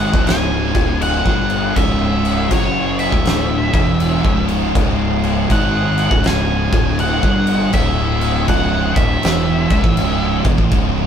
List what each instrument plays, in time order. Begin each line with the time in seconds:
Already playing: distorted electric guitar G#2 D#3 G#3, lead electric guitar F#5
0.00 crash
0.14 fingered electric bass C#1, distorted electric guitar C#2 G#2 C#3, kick
0.27 lead electric guitar G#5, snare, crash
0.75 fingered electric bass D1, distorted electric guitar D2 A2 D3, kick, crash
1.02 lead electric guitar F#5, crash
1.25 fingered electric bass G1, distorted electric guitar G2 D3 G3, kick
1.50 crash
1.76 fingered electric bass C#1, distorted electric guitar C#2 G#2 C#3, lead electric guitar E5, kick, crash
2.25 crash
2.51 fingered electric bass F#1, distorted electric guitar F#2 C#3 F#3, lead electric guitar C#5, kick, crash
2.99 lead electric guitar E5, crash
3.12 fingered electric bass D1, distorted electric guitar D2 A2 D3, kick
3.25 snare, crash
3.73 fingered electric bass E1, distorted electric guitar E2 B2 E3, kick, crash
4.00 crash
4.24 fingered electric bass C#1, distorted electric guitar C#2 G#2 C#3, kick
4.48 crash
4.75 fingered electric bass C#1, distorted electric guitar C#2 G#2 C#3, kick, crash
5.23 crash
5.50 fingered electric bass G#1, distorted electric guitar G#2 D#3 G#3, lead electric guitar F#5, kick, crash
5.98 crash
6.11 fingered electric bass C#1, distorted electric guitar C#2 G#2 C#3, kick
6.24 lead electric guitar G#5, snare, crash
6.72 fingered electric bass D1, distorted electric guitar D2 A2 D3, kick, crash
6.99 lead electric guitar F#5, crash
7.23 fingered electric bass G1, distorted electric guitar G2 D3 G3, kick
7.47 crash
7.73 fingered electric bass D1, distorted electric guitar D2 A2 D3, lead electric guitar E5, kick, crash
8.21 crash
8.48 fingered electric bass C#1, distorted electric guitar C#2 G#2 C#3, lead electric guitar F#5, kick, crash
8.96 fingered electric bass D1, distorted electric guitar D2 A2 D3, lead electric guitar E5, kick, crash
9.22 fingered electric bass E1, distorted electric guitar E2 B2 E3, snare, crash
9.70 fingered electric bass C#1, distorted electric guitar C#2 G#2, kick, crash
9.84 fingered electric bass A1, distorted electric guitar A2 E3, kick
9.97 fingered electric bass C#1, distorted electric guitar C#2 G#2 C#3, crash
10.44 fingered electric bass E1, distorted electric guitar E2 B2, kick, crash
10.58 fingered electric bass A1, distorted electric guitar A2 E3, kick
10.71 fingered electric bass C#1, distorted electric guitar C#2 G#2 C#3, kick, crash